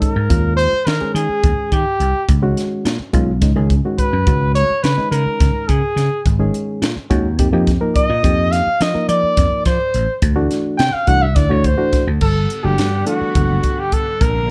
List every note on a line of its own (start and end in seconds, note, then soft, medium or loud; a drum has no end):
0.00 0.13 D#3 medium
0.00 0.13 G#3 medium
0.00 0.14 C#4 medium
0.00 0.14 D#4 loud
0.00 0.54 A#4 medium
0.00 kick medium
0.00 closed hi-hat medium
0.16 0.28 G#2 medium
0.29 0.66 D#2 loud
0.29 0.74 D#3 medium
0.29 0.73 G#3 medium
0.29 0.74 C#4 medium
0.29 0.74 F4 medium
0.29 kick medium
0.29 closed hi-hat medium
0.57 0.89 C5 loud
0.57 closed hi-hat medium
0.73 muted slap bass stroke soft
0.87 0.99 D#3 medium
0.87 1.14 A#4 medium
0.87 snare loud
0.87 closed hi-hat medium
1.01 1.71 D#3 medium
1.01 1.71 G#3 medium
1.01 1.71 C#4 medium
1.01 1.71 G#4 medium
1.01 muted slap bass stroke soft
1.15 1.27 D#3 medium
1.15 1.74 G#4 medium
1.15 closed hi-hat medium
1.29 muted slap bass stroke soft
1.44 1.55 D#2 medium
1.44 kick loud
1.44 closed hi-hat medium
1.57 muted slap bass stroke soft
1.72 1.84 D#3 medium
1.72 2.29 G4 medium
1.72 kick medium
1.72 closed hi-hat medium
2.00 2.12 C2 medium
2.00 closed hi-hat soft
2.29 2.52 C#2 medium
2.29 kick loud
2.29 closed hi-hat medium
2.42 2.86 D#3 medium
2.42 2.86 G#3 medium
2.42 2.86 C#4 medium
2.42 2.87 F#4 loud
2.57 snare soft
2.57 closed hi-hat medium
2.85 2.97 A#2 medium
2.85 snare loud
2.85 closed hi-hat medium
3.00 muted slap bass stroke soft
3.13 3.42 B1 medium
3.13 3.31 D#3 medium
3.13 3.31 G#3 medium
3.13 3.31 C#4 medium
3.13 3.31 F4 loud
3.13 kick medium
3.13 closed hi-hat medium
3.42 3.54 C#2 medium
3.42 3.51 D#3 medium
3.42 3.51 G#3 medium
3.42 3.51 C#4 medium
3.42 3.51 D#4 medium
3.42 kick loud
3.42 snare soft
3.42 closed hi-hat medium
3.56 3.80 C#2 medium
3.56 3.73 D#3 medium
3.56 3.74 G#3 medium
3.56 3.74 C#4 medium
3.56 3.74 G#4 loud
3.70 kick medium
3.70 closed hi-hat medium
3.85 4.11 D#3 medium
3.85 4.11 G#3 medium
3.85 4.11 C#4 medium
3.85 4.11 F#4 medium
3.98 4.51 B4 medium
3.98 kick medium
3.98 closed hi-hat medium
4.13 4.25 F#2 medium
4.27 4.62 C#2 loud
4.27 4.71 D#3 medium
4.27 4.71 G#3 medium
4.27 4.71 C#4 medium
4.27 4.71 F#4 medium
4.27 kick loud
4.27 closed hi-hat medium
4.55 4.84 C#5 loud
4.55 closed hi-hat medium
4.70 muted slap bass stroke soft
4.83 4.96 C#3 medium
4.83 5.11 B4 medium
4.83 snare loud
4.83 closed hi-hat medium
4.97 5.68 D#3 medium
4.97 5.68 G#3 medium
4.97 5.68 C#4 medium
4.97 5.68 D#4 medium
4.97 muted slap bass stroke soft
5.11 5.24 C#3 medium
5.11 5.70 A#4 medium
5.11 closed hi-hat medium
5.26 muted slap bass stroke soft
5.40 5.52 C#2 medium
5.40 kick loud
5.40 snare soft
5.40 closed hi-hat medium
5.68 5.81 C#3 medium
5.68 6.25 G#4 medium
5.68 kick medium
5.68 closed hi-hat medium
5.96 6.08 C#3 medium
5.96 snare soft
5.96 closed hi-hat medium
6.26 6.49 G#1 loud
6.26 kick medium
6.26 closed hi-hat medium
6.39 6.83 D#3 loud
6.39 6.83 G#3 medium
6.39 6.83 C#4 medium
6.39 6.84 G#4 loud
6.54 closed hi-hat medium
6.82 6.94 A#2 medium
6.82 snare loud
6.82 closed hi-hat medium
6.96 muted slap bass stroke soft
7.10 7.39 D#2 medium
7.10 7.28 D#3 loud
7.10 7.28 G#3 medium
7.10 7.28 C#4 medium
7.10 7.28 F#4 loud
7.10 kick medium
7.10 closed hi-hat medium
7.39 7.51 F2 medium
7.39 7.48 F3 medium
7.39 7.48 A#3 medium
7.39 7.48 D#4 medium
7.39 7.48 G4 loud
7.39 kick loud
7.39 closed hi-hat medium
7.53 7.76 F2 medium
7.53 7.70 F3 medium
7.53 7.70 A#3 medium
7.53 7.70 D#4 medium
7.53 7.71 G4 loud
7.67 kick medium
7.67 snare soft
7.67 closed hi-hat medium
7.81 8.07 F3 medium
7.81 8.07 A#3 medium
7.81 8.07 D#4 medium
7.81 8.07 A#4 loud
7.96 8.53 D#5 loud
7.96 kick medium
7.96 closed hi-hat medium
8.09 8.21 A#2 medium
8.23 8.60 F2 loud
8.23 8.67 F3 medium
8.23 8.67 A#3 medium
8.23 8.67 D#4 medium
8.23 8.67 G4 medium
8.23 kick medium
8.23 closed hi-hat medium
8.52 8.84 F5 loud
8.52 snare soft
8.52 closed hi-hat medium
8.67 muted slap bass stroke soft
8.81 8.92 F3 medium
8.81 9.08 D#5 medium
8.81 snare loud
8.81 closed hi-hat medium
8.94 9.64 F3 medium
8.94 9.64 A#3 medium
8.94 9.65 D#4 medium
8.94 9.65 A#4 medium
8.94 muted slap bass stroke soft
9.09 9.21 F3 medium
9.09 9.61 D5 medium
9.09 closed hi-hat medium
9.23 muted slap bass stroke soft
9.37 9.49 F2 medium
9.37 kick loud
9.37 snare soft
9.37 closed hi-hat loud
9.52 muted slap bass stroke soft
9.65 9.78 F3 medium
9.65 10.18 C5 medium
9.65 kick medium
9.65 snare soft
9.65 closed hi-hat medium
9.94 10.06 A1 medium
9.94 closed hi-hat medium
10.22 10.46 D2 medium
10.22 kick loud
10.22 closed hi-hat medium
10.36 10.80 E3 loud
10.36 10.80 A3 medium
10.36 10.80 D4 loud
10.36 10.80 F#4 loud
10.51 snare soft
10.51 closed hi-hat medium
10.78 10.91 C3 medium
10.78 10.95 G5 medium
10.78 snare loud
10.78 closed hi-hat medium
10.93 11.10 F5 medium
10.93 muted slap bass stroke soft
11.07 11.36 C2 loud
11.07 11.25 E3 medium
11.07 11.25 A3 medium
11.07 11.25 D4 medium
11.07 11.25 F#4 loud
11.07 11.24 F#5 loud
11.07 kick medium
11.07 closed hi-hat medium
11.22 11.37 E5 medium
11.36 11.48 D2 medium
11.36 11.45 E3 medium
11.36 11.45 A3 medium
11.36 11.45 D4 medium
11.36 11.45 E4 medium
11.36 11.52 D5 medium
11.36 kick loud
11.36 snare soft
11.36 closed hi-hat medium
11.49 11.74 D2 medium
11.49 11.67 E3 medium
11.49 11.67 A3 medium
11.49 11.67 D4 medium
11.49 11.67 F#4 medium
11.49 11.67 C#5 medium
11.64 12.08 C5 medium
11.64 kick medium
11.64 closed hi-hat soft
11.77 12.04 E3 medium
11.77 12.04 A3 medium
11.77 12.05 D4 medium
11.77 12.04 F#4 loud
11.93 kick medium
11.93 snare soft
11.93 closed hi-hat medium
12.07 12.19 D2 medium
12.21 12.45 G1 medium
12.21 14.51 D3 medium
12.21 14.20 G3 medium
12.21 14.20 B3 medium
12.21 12.66 A4 medium
12.21 14.20 F#5 medium
12.21 kick medium
12.21 crash medium
12.50 closed hi-hat soft
12.63 12.76 F#1 medium
12.63 12.90 E3 medium
12.63 12.90 A3 medium
12.63 12.90 D4 medium
12.63 12.90 F#4 medium
12.63 13.07 G4 medium
12.78 13.02 G2 medium
12.78 snare medium
12.78 closed hi-hat medium
13.06 13.77 E3 medium
13.06 13.77 A3 medium
13.06 13.77 D4 medium
13.06 13.81 F#4 medium
13.06 13.77 A4 medium
13.06 closed hi-hat medium
13.21 muted slap bass stroke soft
13.35 13.59 F#1 medium
13.35 kick loud
13.35 closed hi-hat medium
13.63 kick medium
13.63 closed hi-hat medium
13.79 13.95 G4 medium
13.92 14.23 A4 medium
13.92 kick medium
13.92 closed hi-hat medium
14.20 14.51 A#1 medium
14.20 14.51 A#3 medium
14.20 14.51 C4 medium
14.20 14.51 F4 medium
14.20 14.51 A#4 medium
14.20 kick medium
14.20 closed hi-hat medium